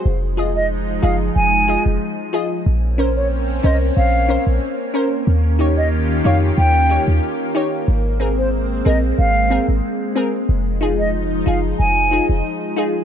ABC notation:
X:1
M:4/4
L:1/16
Q:1/4=92
K:Fphr
V:1 name="Flute"
z3 e z2 f z a3 z4 z | z3 d z2 e z f3 z4 z | z3 e z2 f z =g3 z4 z | z3 c z2 e z f3 z4 z |
z3 e z2 f z a3 z4 z |]
V:2 name="Synth pluck"
z2 [FAe]2 z2 [FAe]2 z2 [FAe]2 z2 [FAe]2 | z2 [DBc]2 z2 [DBc]2 z2 [DBc]2 z2 [DBc]2 | z2 [E=Gd]2 z2 [EGd]2 z2 [EGd]2 z2 [EGd]2 | z2 [CAB]2 z2 [CAB]2 z2 [CAB]2 z2 [CAB]2 |
z2 [EFA]2 z2 [EFA]2 z2 [EFA]2 z2 [EFA]2 |]
V:3 name="Analog synth pad"
[F,A,E]16 | [B,CD]16 | [E,DF=G]16 | [A,C]16 |
[F,E]16 |]
V:4 name="808-style bass" clef=bass
F,,,6 G,,,2 F,,,3 F,,, z4 | B,,,6 C,,2 B,,,3 B,,, z4 | E,,6 F,,2 E,,3 E,, z4 | A,,,6 B,,,2 A,,,3 A,,, z4 |
F,,,6 G,,,2 F,,,3 F,,, z4 |]